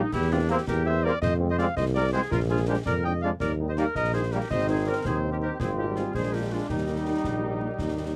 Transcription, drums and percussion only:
0.12 concert bass drum, snare, crash
0.67 concert bass drum, snare
1.22 concert bass drum, snare
1.58 snare
1.77 concert bass drum, snare
2.31 concert bass drum, snare
2.86 concert bass drum, snare
3.40 concert bass drum, snare
3.77 snare
3.95 concert bass drum, snare
4.50 concert bass drum, snare, crash
5.05 concert bass drum, snare
5.60 concert bass drum, snare
5.96 snare
6.14 concert bass drum, snare
6.69 concert bass drum, snare
7.24 concert bass drum, snare
7.79 concert bass drum, snare

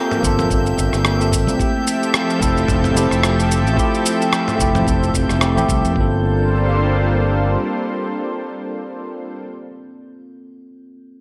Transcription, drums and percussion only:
0.11 mid tom, shaker
0.23 kick, shaker
0.39 mid tom, shaker
0.50 kick, shaker
0.66 shaker
0.78 kick, shaker
0.93 cross-stick, shaker
1.05 cross-stick, shaker
1.21 shaker
1.32 kick, shaker
1.48 shaker
1.60 kick, shaker
1.87 shaker
2.03 shaker
2.14 cross-stick, shaker
2.30 shaker
2.41 kick, shaker
2.57 shaker
2.68 kick, mid tom, shaker
2.84 mid tom, shaker
2.97 shaker
3.11 cross-stick, shaker
3.23 cross-stick, shaker
3.40 shaker
3.51 shaker
3.67 shaker
3.77 kick, shaker
3.94 shaker
4.06 shaker
4.22 shaker
4.33 cross-stick, shaker
4.48 mid tom, shaker
4.59 kick, shaker
4.75 mid tom, shaker
4.87 kick, shaker
5.03 shaker
5.14 kick, shaker
5.29 cross-stick, shaker
5.41 cross-stick, shaker
5.58 shaker
5.69 kick, shaker
5.85 shaker
5.96 kick

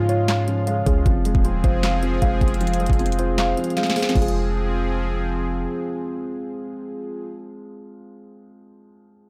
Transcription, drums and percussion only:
0.09 closed hi-hat
0.28 snare, clap, closed hi-hat
0.48 closed hi-hat
0.67 closed hi-hat
0.86 kick, closed hi-hat
1.06 kick, closed hi-hat
1.25 closed hi-hat
1.35 kick
1.45 closed hi-hat
1.64 kick, closed hi-hat
1.83 snare, clap, closed hi-hat
2.03 closed hi-hat
2.22 kick, closed hi-hat
2.41 kick, closed hi-hat
2.48 closed hi-hat
2.54 closed hi-hat
2.61 closed hi-hat
2.67 closed hi-hat
2.74 closed hi-hat
2.80 closed hi-hat
2.86 kick, closed hi-hat
2.93 closed hi-hat
2.99 closed hi-hat
3.06 closed hi-hat
3.12 closed hi-hat
3.19 closed hi-hat
3.38 snare, clap, closed hi-hat
3.57 closed hi-hat
3.64 closed hi-hat
3.70 closed hi-hat
3.77 snare, closed hi-hat
3.83 snare, closed hi-hat
3.90 snare
3.96 snare, closed hi-hat, open hi-hat
4.03 snare, closed hi-hat
4.09 snare, closed hi-hat
4.15 kick, closed hi-hat, crash
4.22 closed hi-hat
4.28 closed hi-hat

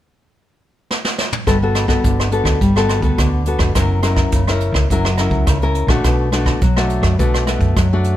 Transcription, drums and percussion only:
0.91 snare
1.05 snare
1.18 snare
1.32 mid tom
1.47 kick, cross-stick, closed hi-hat
1.75 cross-stick, closed hi-hat
1.88 kick, cross-stick, closed hi-hat
2.04 kick, closed hi-hat
2.20 cross-stick, closed hi-hat
2.32 closed hi-hat
2.45 kick, cross-stick, closed hi-hat
2.61 kick, closed hi-hat
2.76 cross-stick, closed hi-hat
2.89 cross-stick, closed hi-hat
3.02 kick, closed hi-hat
3.18 kick, cross-stick, closed hi-hat
3.46 closed hi-hat
3.59 kick, cross-stick, closed hi-hat
3.75 kick, cross-stick, closed hi-hat
4.03 cross-stick, closed hi-hat
4.16 kick, cross-stick, closed hi-hat
4.32 kick, closed hi-hat
4.48 cross-stick, closed hi-hat
4.60 closed hi-hat
4.74 kick, cross-stick
4.90 kick, closed hi-hat
5.05 cross-stick, closed hi-hat
5.18 cross-stick, closed hi-hat
5.31 kick, closed hi-hat
5.47 kick, cross-stick, closed hi-hat
5.62 closed hi-hat
5.75 closed hi-hat
5.88 kick, cross-stick, closed hi-hat
6.04 kick, cross-stick, closed hi-hat
6.32 cross-stick, closed hi-hat
6.46 kick, cross-stick, closed hi-hat
6.61 kick, closed hi-hat
6.77 cross-stick, closed hi-hat
6.90 closed hi-hat
7.03 kick, cross-stick, closed hi-hat
7.19 kick, closed hi-hat
7.34 cross-stick, closed hi-hat
7.47 cross-stick, closed hi-hat
7.60 kick, closed hi-hat
7.76 kick, cross-stick, closed hi-hat
8.04 closed hi-hat

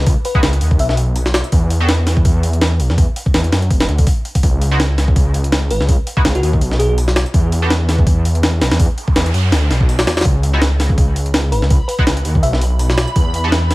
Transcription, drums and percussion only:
0.07 kick, open hi-hat
0.25 open hi-hat
0.35 kick
0.43 snare, open hi-hat
0.53 closed hi-hat
0.61 open hi-hat
0.71 kick
0.79 open hi-hat
0.89 snare
0.97 open hi-hat
1.16 open hi-hat
1.26 snare
1.34 snare, open hi-hat
1.44 closed hi-hat
1.52 kick, open hi-hat
1.70 open hi-hat
1.89 snare, open hi-hat
2.07 snare, open hi-hat
2.17 kick
2.25 kick, open hi-hat
2.43 open hi-hat
2.53 closed hi-hat
2.61 snare, open hi-hat
2.80 open hi-hat
2.90 snare
2.98 kick, open hi-hat
3.16 open hi-hat
3.26 kick
3.34 snare, open hi-hat
3.44 closed hi-hat
3.52 snare, open hi-hat
3.62 closed hi-hat
3.71 kick, open hi-hat
3.80 snare, open hi-hat
3.89 closed hi-hat
3.99 kick, open hi-hat
4.07 kick, open hi-hat
4.25 open hi-hat
4.35 kick, open hi-hat
4.43 kick, open hi-hat
4.61 open hi-hat
4.80 snare, open hi-hat
4.98 snare, open hi-hat
5.08 kick
5.16 kick, open hi-hat
5.34 open hi-hat
5.44 closed hi-hat
5.52 snare, open hi-hat
5.71 open hi-hat
5.81 snare
5.89 kick, open hi-hat
6.07 open hi-hat
6.17 kick
6.25 snare, open hi-hat
6.35 closed hi-hat
6.43 open hi-hat
6.53 kick
6.61 open hi-hat
6.71 snare
6.80 open hi-hat
6.98 open hi-hat
7.08 snare
7.16 snare, open hi-hat
7.26 closed hi-hat
7.34 kick, open hi-hat
7.52 open hi-hat
7.70 snare, open hi-hat
7.89 snare, open hi-hat
7.99 kick
8.07 kick, open hi-hat
8.25 open hi-hat
8.35 closed hi-hat
8.43 snare, open hi-hat
8.61 snare, open hi-hat
8.71 snare, open hi-hat
8.79 kick, open hi-hat
8.98 open hi-hat
9.08 kick
9.16 snare, open hi-hat
9.26 closed hi-hat
9.34 open hi-hat
9.52 snare, open hi-hat
9.71 snare, open hi-hat
9.80 kick
9.89 open hi-hat
9.99 snare, open hi-hat
10.07 snare, open hi-hat
10.17 snare, open hi-hat
10.21 kick, snare, open hi-hat
10.25 open hi-hat
10.43 open hi-hat
10.62 snare, open hi-hat
10.80 snare, open hi-hat
10.90 kick
10.98 kick, open hi-hat
11.16 open hi-hat
11.26 closed hi-hat
11.34 snare, open hi-hat
11.52 open hi-hat
11.62 snare
11.70 kick, open hi-hat
11.89 open hi-hat
11.99 kick
12.07 snare, open hi-hat
12.17 closed hi-hat
12.25 open hi-hat
12.35 kick
12.43 open hi-hat
12.53 snare
12.61 open hi-hat
12.79 open hi-hat
12.90 snare
12.98 snare, open hi-hat
13.08 closed hi-hat
13.16 kick, open hi-hat
13.34 open hi-hat
13.52 snare, open hi-hat
13.71 snare, open hi-hat

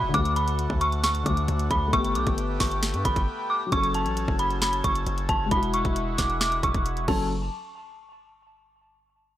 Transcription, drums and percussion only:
0.14 kick, closed hi-hat
0.25 closed hi-hat
0.36 closed hi-hat
0.48 closed hi-hat
0.59 closed hi-hat
0.70 kick
0.81 closed hi-hat
0.92 closed hi-hat
1.04 snare, closed hi-hat
1.15 closed hi-hat
1.26 kick, closed hi-hat
1.37 closed hi-hat
1.48 closed hi-hat
1.59 closed hi-hat
1.71 kick, closed hi-hat
1.93 kick, closed hi-hat
2.05 closed hi-hat
2.15 closed hi-hat
2.27 kick, closed hi-hat
2.38 closed hi-hat
2.60 kick, snare, open hi-hat
2.71 closed hi-hat
2.83 snare, closed hi-hat
2.94 closed hi-hat
3.05 kick, closed hi-hat
3.16 kick, closed hi-hat
3.72 kick, closed hi-hat
3.84 closed hi-hat
3.94 closed hi-hat
4.06 closed hi-hat
4.17 closed hi-hat
4.28 kick
4.39 closed hi-hat
4.51 closed hi-hat
4.62 snare, closed hi-hat
4.73 closed hi-hat
4.84 kick, closed hi-hat
4.95 closed hi-hat
5.07 closed hi-hat
5.18 closed hi-hat
5.29 kick, closed hi-hat
5.51 kick, closed hi-hat
5.63 closed hi-hat
5.74 closed hi-hat
5.85 kick, closed hi-hat
5.96 closed hi-hat
6.18 kick, snare, closed hi-hat
6.30 closed hi-hat
6.41 snare, closed hi-hat
6.52 closed hi-hat
6.63 kick, closed hi-hat
6.74 kick, closed hi-hat
6.86 closed hi-hat
6.97 closed hi-hat
7.08 kick, crash

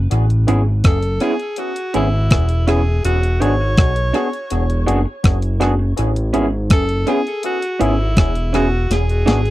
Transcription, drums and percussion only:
0.11 closed hi-hat
0.30 closed hi-hat
0.48 closed hi-hat
0.84 kick, cross-stick, closed hi-hat
1.02 closed hi-hat
1.20 closed hi-hat
1.40 closed hi-hat
1.56 closed hi-hat
1.76 closed hi-hat
1.94 closed hi-hat
2.31 kick, cross-stick, closed hi-hat
2.49 closed hi-hat
2.68 cross-stick, closed hi-hat
3.05 closed hi-hat
3.23 closed hi-hat
3.42 closed hi-hat
3.77 kick, cross-stick, closed hi-hat
3.96 closed hi-hat
4.14 closed hi-hat
4.33 closed hi-hat
4.50 closed hi-hat
4.70 closed hi-hat
4.88 closed hi-hat
5.24 kick, cross-stick, closed hi-hat
5.42 closed hi-hat
5.61 cross-stick, closed hi-hat
5.97 closed hi-hat
6.16 closed hi-hat
6.34 closed hi-hat
6.70 kick, cross-stick, closed hi-hat
6.89 closed hi-hat
7.07 closed hi-hat
7.27 closed hi-hat
7.43 closed hi-hat
7.62 closed hi-hat
7.81 closed hi-hat
8.17 kick, cross-stick, closed hi-hat
8.35 closed hi-hat
8.54 cross-stick, closed hi-hat
8.91 snare, closed hi-hat
9.09 closed hi-hat
9.28 snare, closed hi-hat
9.46 closed hi-hat

